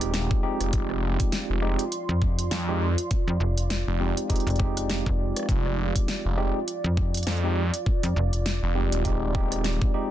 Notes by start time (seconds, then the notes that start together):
Already playing: D#1 G#3 C4 D#4 F4 G4 D5
0.01 cross-stick, closed hi-hat
0.14 snare, closed hi-hat
0.31 kick
0.43 G#3 C4 D#4 G4
0.60 F1, cross-stick, closed hi-hat
0.73 F1 C6, kick, closed hi-hat
0.90 cross-stick
1.20 kick, closed hi-hat
1.32 snare, closed hi-hat
1.50 F1
1.62 G#3 C4 D#4 G4
1.79 closed hi-hat
1.92 closed hi-hat
2.09 F2
2.22 kick
2.39 closed hi-hat
2.51 F2, snare, closed hi-hat
2.68 G#3 C4 D#4 G4
2.98 closed hi-hat
3.11 kick, closed hi-hat
3.28 F2
3.40 F1
3.58 closed hi-hat
3.70 snare, closed hi-hat
3.88 F1
4.00 G#3 C4 D#4 G4
4.17 closed hi-hat
4.29 G#3 C4 D#4 G4, kick, closed hi-hat
4.36 closed hi-hat
4.40 closed hi-hat
4.47 F1, closed hi-hat
4.50 closed hi-hat
4.56 G#3 C4 D#4 G4, kick, closed hi-hat
4.77 cross-stick, closed hi-hat
4.90 snare, closed hi-hat
5.06 F1, kick
5.36 cross-stick, closed hi-hat
5.39 cross-stick
5.43 cross-stick
5.46 F1, kick, cross-stick, closed hi-hat
5.53 cross-stick
5.58 cross-stick
5.62 cross-stick
5.66 cross-stick
5.96 kick, closed hi-hat
6.08 snare, closed hi-hat
6.25 F1
6.37 G#3 C4 D#4 G4
6.68 closed hi-hat
6.84 F2
6.97 kick
7.14 closed hi-hat
7.17 closed hi-hat
7.23 F2, snare, closed hi-hat
7.27 closed hi-hat
7.32 closed hi-hat
7.37 closed hi-hat
7.44 G#3 C4 D#4 G4
7.74 closed hi-hat
7.86 kick
8.03 F2, closed hi-hat
8.16 F1
8.33 closed hi-hat
8.46 snare, closed hi-hat
8.63 F1
8.75 G#3 C4 D#4 G4
8.92 D#1, closed hi-hat
9.05 G#3 C4 D#4 G4, kick, closed hi-hat
9.34 G#3 C4 D#4 G4, kick
9.52 cross-stick, closed hi-hat
9.64 snare, closed hi-hat
9.82 kick
9.94 G#3 C4 D#4 G4